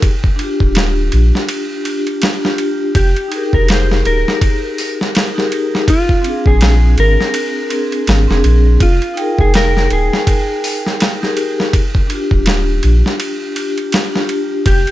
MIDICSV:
0, 0, Header, 1, 5, 480
1, 0, Start_track
1, 0, Tempo, 731707
1, 16, Time_signature, 4, 2, 24, 8
1, 9784, End_track
2, 0, Start_track
2, 0, Title_t, "Clean electric guitar"
2, 0, Program_c, 0, 27
2, 1941, Note_on_c, 0, 67, 83
2, 2324, Note_on_c, 0, 70, 89
2, 2331, Note_off_c, 0, 67, 0
2, 2427, Note_off_c, 0, 70, 0
2, 2427, Note_on_c, 0, 72, 106
2, 2662, Note_off_c, 0, 72, 0
2, 2667, Note_on_c, 0, 70, 88
2, 3355, Note_off_c, 0, 70, 0
2, 3868, Note_on_c, 0, 65, 84
2, 4245, Note_on_c, 0, 68, 88
2, 4254, Note_off_c, 0, 65, 0
2, 4557, Note_off_c, 0, 68, 0
2, 4591, Note_on_c, 0, 70, 90
2, 5517, Note_off_c, 0, 70, 0
2, 5788, Note_on_c, 0, 65, 77
2, 6170, Note_on_c, 0, 68, 86
2, 6174, Note_off_c, 0, 65, 0
2, 6266, Note_off_c, 0, 68, 0
2, 6274, Note_on_c, 0, 70, 103
2, 6512, Note_off_c, 0, 70, 0
2, 6514, Note_on_c, 0, 68, 82
2, 7199, Note_off_c, 0, 68, 0
2, 9621, Note_on_c, 0, 67, 87
2, 9784, Note_off_c, 0, 67, 0
2, 9784, End_track
3, 0, Start_track
3, 0, Title_t, "Vibraphone"
3, 0, Program_c, 1, 11
3, 236, Note_on_c, 1, 62, 81
3, 260, Note_on_c, 1, 65, 71
3, 285, Note_on_c, 1, 67, 86
3, 1182, Note_off_c, 1, 62, 0
3, 1195, Note_off_c, 1, 65, 0
3, 1207, Note_off_c, 1, 67, 0
3, 1207, Note_on_c, 1, 62, 72
3, 1218, Note_on_c, 1, 65, 66
3, 1232, Note_on_c, 1, 67, 76
3, 1558, Note_off_c, 1, 62, 0
3, 1564, Note_off_c, 1, 65, 0
3, 1571, Note_off_c, 1, 67, 0
3, 1585, Note_on_c, 1, 62, 90
3, 1597, Note_on_c, 1, 65, 80
3, 1610, Note_on_c, 1, 67, 102
3, 1918, Note_off_c, 1, 62, 0
3, 1924, Note_off_c, 1, 65, 0
3, 1931, Note_off_c, 1, 67, 0
3, 2153, Note_on_c, 1, 63, 90
3, 2170, Note_on_c, 1, 67, 76
3, 2186, Note_on_c, 1, 68, 78
3, 2203, Note_on_c, 1, 70, 97
3, 3472, Note_off_c, 1, 63, 0
3, 3480, Note_off_c, 1, 67, 0
3, 3488, Note_off_c, 1, 68, 0
3, 3497, Note_off_c, 1, 70, 0
3, 3508, Note_on_c, 1, 63, 98
3, 3516, Note_on_c, 1, 67, 85
3, 3524, Note_on_c, 1, 68, 84
3, 3532, Note_on_c, 1, 70, 97
3, 3840, Note_off_c, 1, 63, 0
3, 3844, Note_off_c, 1, 67, 0
3, 3848, Note_off_c, 1, 68, 0
3, 3852, Note_off_c, 1, 70, 0
3, 4076, Note_on_c, 1, 60, 77
3, 4100, Note_on_c, 1, 62, 74
3, 4125, Note_on_c, 1, 68, 84
3, 5022, Note_off_c, 1, 60, 0
3, 5035, Note_off_c, 1, 62, 0
3, 5047, Note_off_c, 1, 68, 0
3, 5048, Note_on_c, 1, 60, 67
3, 5062, Note_on_c, 1, 62, 61
3, 5073, Note_on_c, 1, 68, 74
3, 5399, Note_off_c, 1, 60, 0
3, 5406, Note_off_c, 1, 62, 0
3, 5412, Note_off_c, 1, 68, 0
3, 5430, Note_on_c, 1, 60, 88
3, 5442, Note_on_c, 1, 62, 77
3, 5453, Note_on_c, 1, 68, 97
3, 5761, Note_off_c, 1, 60, 0
3, 5767, Note_off_c, 1, 62, 0
3, 5772, Note_off_c, 1, 68, 0
3, 5995, Note_on_c, 1, 63, 81
3, 6012, Note_on_c, 1, 79, 73
3, 6028, Note_on_c, 1, 68, 82
3, 6046, Note_on_c, 1, 70, 93
3, 7313, Note_off_c, 1, 63, 0
3, 7321, Note_off_c, 1, 79, 0
3, 7329, Note_off_c, 1, 68, 0
3, 7338, Note_off_c, 1, 70, 0
3, 7352, Note_on_c, 1, 63, 96
3, 7360, Note_on_c, 1, 67, 90
3, 7367, Note_on_c, 1, 68, 88
3, 7376, Note_on_c, 1, 70, 106
3, 7682, Note_off_c, 1, 63, 0
3, 7686, Note_off_c, 1, 67, 0
3, 7689, Note_off_c, 1, 68, 0
3, 7694, Note_off_c, 1, 70, 0
3, 7921, Note_on_c, 1, 62, 83
3, 7945, Note_on_c, 1, 65, 72
3, 7970, Note_on_c, 1, 67, 89
3, 8865, Note_off_c, 1, 62, 0
3, 8877, Note_off_c, 1, 65, 0
3, 8889, Note_off_c, 1, 67, 0
3, 8889, Note_on_c, 1, 62, 69
3, 8901, Note_on_c, 1, 65, 66
3, 8914, Note_on_c, 1, 67, 79
3, 9240, Note_off_c, 1, 62, 0
3, 9246, Note_off_c, 1, 65, 0
3, 9252, Note_off_c, 1, 67, 0
3, 9270, Note_on_c, 1, 62, 88
3, 9283, Note_on_c, 1, 65, 82
3, 9295, Note_on_c, 1, 67, 93
3, 9601, Note_off_c, 1, 62, 0
3, 9608, Note_off_c, 1, 65, 0
3, 9614, Note_off_c, 1, 67, 0
3, 9784, End_track
4, 0, Start_track
4, 0, Title_t, "Sub bass"
4, 0, Program_c, 2, 38
4, 397, Note_on_c, 2, 27, 99
4, 717, Note_off_c, 2, 27, 0
4, 739, Note_on_c, 2, 34, 92
4, 862, Note_off_c, 2, 34, 0
4, 1935, Note_on_c, 2, 29, 97
4, 2059, Note_off_c, 2, 29, 0
4, 2317, Note_on_c, 2, 29, 96
4, 2638, Note_off_c, 2, 29, 0
4, 2658, Note_on_c, 2, 27, 89
4, 2781, Note_off_c, 2, 27, 0
4, 4237, Note_on_c, 2, 34, 94
4, 4557, Note_off_c, 2, 34, 0
4, 4576, Note_on_c, 2, 32, 88
4, 4700, Note_off_c, 2, 32, 0
4, 5297, Note_on_c, 2, 32, 91
4, 5420, Note_off_c, 2, 32, 0
4, 5440, Note_on_c, 2, 29, 89
4, 5526, Note_off_c, 2, 29, 0
4, 5540, Note_on_c, 2, 34, 97
4, 5754, Note_off_c, 2, 34, 0
4, 5777, Note_on_c, 2, 29, 94
4, 5900, Note_off_c, 2, 29, 0
4, 6159, Note_on_c, 2, 29, 90
4, 6478, Note_off_c, 2, 29, 0
4, 6498, Note_on_c, 2, 27, 90
4, 6621, Note_off_c, 2, 27, 0
4, 8077, Note_on_c, 2, 27, 94
4, 8398, Note_off_c, 2, 27, 0
4, 8420, Note_on_c, 2, 34, 94
4, 8542, Note_off_c, 2, 34, 0
4, 9618, Note_on_c, 2, 29, 93
4, 9741, Note_off_c, 2, 29, 0
4, 9784, End_track
5, 0, Start_track
5, 0, Title_t, "Drums"
5, 16, Note_on_c, 9, 36, 107
5, 16, Note_on_c, 9, 51, 82
5, 82, Note_off_c, 9, 36, 0
5, 82, Note_off_c, 9, 51, 0
5, 156, Note_on_c, 9, 36, 90
5, 222, Note_off_c, 9, 36, 0
5, 256, Note_on_c, 9, 51, 55
5, 322, Note_off_c, 9, 51, 0
5, 396, Note_on_c, 9, 36, 86
5, 461, Note_off_c, 9, 36, 0
5, 492, Note_on_c, 9, 51, 80
5, 503, Note_on_c, 9, 38, 98
5, 558, Note_off_c, 9, 51, 0
5, 568, Note_off_c, 9, 38, 0
5, 734, Note_on_c, 9, 51, 58
5, 800, Note_off_c, 9, 51, 0
5, 887, Note_on_c, 9, 38, 41
5, 953, Note_off_c, 9, 38, 0
5, 974, Note_on_c, 9, 51, 86
5, 1040, Note_off_c, 9, 51, 0
5, 1215, Note_on_c, 9, 51, 64
5, 1280, Note_off_c, 9, 51, 0
5, 1356, Note_on_c, 9, 51, 41
5, 1422, Note_off_c, 9, 51, 0
5, 1454, Note_on_c, 9, 51, 79
5, 1464, Note_on_c, 9, 38, 98
5, 1519, Note_off_c, 9, 51, 0
5, 1530, Note_off_c, 9, 38, 0
5, 1606, Note_on_c, 9, 38, 45
5, 1672, Note_off_c, 9, 38, 0
5, 1694, Note_on_c, 9, 51, 63
5, 1760, Note_off_c, 9, 51, 0
5, 1935, Note_on_c, 9, 36, 101
5, 1935, Note_on_c, 9, 51, 81
5, 2000, Note_off_c, 9, 51, 0
5, 2001, Note_off_c, 9, 36, 0
5, 2076, Note_on_c, 9, 51, 43
5, 2142, Note_off_c, 9, 51, 0
5, 2175, Note_on_c, 9, 51, 61
5, 2241, Note_off_c, 9, 51, 0
5, 2316, Note_on_c, 9, 36, 82
5, 2382, Note_off_c, 9, 36, 0
5, 2417, Note_on_c, 9, 51, 81
5, 2427, Note_on_c, 9, 38, 108
5, 2483, Note_off_c, 9, 51, 0
5, 2493, Note_off_c, 9, 38, 0
5, 2568, Note_on_c, 9, 38, 43
5, 2634, Note_off_c, 9, 38, 0
5, 2659, Note_on_c, 9, 51, 56
5, 2725, Note_off_c, 9, 51, 0
5, 2809, Note_on_c, 9, 38, 50
5, 2875, Note_off_c, 9, 38, 0
5, 2896, Note_on_c, 9, 36, 103
5, 2897, Note_on_c, 9, 51, 83
5, 2961, Note_off_c, 9, 36, 0
5, 2963, Note_off_c, 9, 51, 0
5, 3138, Note_on_c, 9, 46, 75
5, 3204, Note_off_c, 9, 46, 0
5, 3288, Note_on_c, 9, 38, 40
5, 3354, Note_off_c, 9, 38, 0
5, 3378, Note_on_c, 9, 51, 72
5, 3389, Note_on_c, 9, 38, 103
5, 3444, Note_off_c, 9, 51, 0
5, 3454, Note_off_c, 9, 38, 0
5, 3530, Note_on_c, 9, 38, 37
5, 3596, Note_off_c, 9, 38, 0
5, 3620, Note_on_c, 9, 51, 63
5, 3686, Note_off_c, 9, 51, 0
5, 3771, Note_on_c, 9, 38, 46
5, 3837, Note_off_c, 9, 38, 0
5, 3856, Note_on_c, 9, 36, 109
5, 3857, Note_on_c, 9, 51, 88
5, 3921, Note_off_c, 9, 36, 0
5, 3923, Note_off_c, 9, 51, 0
5, 3996, Note_on_c, 9, 36, 82
5, 4062, Note_off_c, 9, 36, 0
5, 4096, Note_on_c, 9, 51, 60
5, 4162, Note_off_c, 9, 51, 0
5, 4236, Note_on_c, 9, 36, 83
5, 4301, Note_off_c, 9, 36, 0
5, 4335, Note_on_c, 9, 51, 83
5, 4345, Note_on_c, 9, 38, 107
5, 4400, Note_off_c, 9, 51, 0
5, 4411, Note_off_c, 9, 38, 0
5, 4577, Note_on_c, 9, 51, 61
5, 4642, Note_off_c, 9, 51, 0
5, 4727, Note_on_c, 9, 38, 40
5, 4792, Note_off_c, 9, 38, 0
5, 4814, Note_on_c, 9, 51, 84
5, 4880, Note_off_c, 9, 51, 0
5, 5054, Note_on_c, 9, 51, 66
5, 5119, Note_off_c, 9, 51, 0
5, 5197, Note_on_c, 9, 51, 42
5, 5263, Note_off_c, 9, 51, 0
5, 5296, Note_on_c, 9, 51, 73
5, 5307, Note_on_c, 9, 38, 100
5, 5362, Note_off_c, 9, 51, 0
5, 5372, Note_off_c, 9, 38, 0
5, 5449, Note_on_c, 9, 38, 43
5, 5514, Note_off_c, 9, 38, 0
5, 5537, Note_on_c, 9, 51, 62
5, 5603, Note_off_c, 9, 51, 0
5, 5775, Note_on_c, 9, 36, 108
5, 5775, Note_on_c, 9, 51, 89
5, 5841, Note_off_c, 9, 36, 0
5, 5841, Note_off_c, 9, 51, 0
5, 5916, Note_on_c, 9, 51, 41
5, 5982, Note_off_c, 9, 51, 0
5, 6018, Note_on_c, 9, 51, 55
5, 6083, Note_off_c, 9, 51, 0
5, 6157, Note_on_c, 9, 36, 84
5, 6222, Note_off_c, 9, 36, 0
5, 6257, Note_on_c, 9, 51, 77
5, 6267, Note_on_c, 9, 38, 106
5, 6322, Note_off_c, 9, 51, 0
5, 6333, Note_off_c, 9, 38, 0
5, 6408, Note_on_c, 9, 38, 41
5, 6474, Note_off_c, 9, 38, 0
5, 6497, Note_on_c, 9, 51, 56
5, 6563, Note_off_c, 9, 51, 0
5, 6648, Note_on_c, 9, 38, 48
5, 6714, Note_off_c, 9, 38, 0
5, 6737, Note_on_c, 9, 36, 108
5, 6738, Note_on_c, 9, 51, 86
5, 6803, Note_off_c, 9, 36, 0
5, 6803, Note_off_c, 9, 51, 0
5, 6980, Note_on_c, 9, 46, 78
5, 7045, Note_off_c, 9, 46, 0
5, 7127, Note_on_c, 9, 38, 41
5, 7193, Note_off_c, 9, 38, 0
5, 7219, Note_on_c, 9, 51, 82
5, 7229, Note_on_c, 9, 38, 99
5, 7284, Note_off_c, 9, 51, 0
5, 7295, Note_off_c, 9, 38, 0
5, 7367, Note_on_c, 9, 38, 35
5, 7433, Note_off_c, 9, 38, 0
5, 7456, Note_on_c, 9, 51, 67
5, 7522, Note_off_c, 9, 51, 0
5, 7609, Note_on_c, 9, 38, 45
5, 7675, Note_off_c, 9, 38, 0
5, 7697, Note_on_c, 9, 36, 106
5, 7698, Note_on_c, 9, 51, 86
5, 7763, Note_off_c, 9, 36, 0
5, 7764, Note_off_c, 9, 51, 0
5, 7837, Note_on_c, 9, 36, 89
5, 7903, Note_off_c, 9, 36, 0
5, 7936, Note_on_c, 9, 51, 61
5, 8002, Note_off_c, 9, 51, 0
5, 8076, Note_on_c, 9, 36, 90
5, 8142, Note_off_c, 9, 36, 0
5, 8172, Note_on_c, 9, 51, 85
5, 8183, Note_on_c, 9, 38, 103
5, 8238, Note_off_c, 9, 51, 0
5, 8248, Note_off_c, 9, 38, 0
5, 8415, Note_on_c, 9, 51, 63
5, 8481, Note_off_c, 9, 51, 0
5, 8567, Note_on_c, 9, 38, 42
5, 8633, Note_off_c, 9, 38, 0
5, 8657, Note_on_c, 9, 51, 80
5, 8722, Note_off_c, 9, 51, 0
5, 8896, Note_on_c, 9, 51, 69
5, 8961, Note_off_c, 9, 51, 0
5, 9037, Note_on_c, 9, 51, 41
5, 9103, Note_off_c, 9, 51, 0
5, 9134, Note_on_c, 9, 51, 75
5, 9145, Note_on_c, 9, 38, 104
5, 9200, Note_off_c, 9, 51, 0
5, 9210, Note_off_c, 9, 38, 0
5, 9286, Note_on_c, 9, 38, 44
5, 9351, Note_off_c, 9, 38, 0
5, 9374, Note_on_c, 9, 51, 62
5, 9440, Note_off_c, 9, 51, 0
5, 9615, Note_on_c, 9, 36, 104
5, 9615, Note_on_c, 9, 51, 86
5, 9681, Note_off_c, 9, 36, 0
5, 9681, Note_off_c, 9, 51, 0
5, 9757, Note_on_c, 9, 51, 42
5, 9784, Note_off_c, 9, 51, 0
5, 9784, End_track
0, 0, End_of_file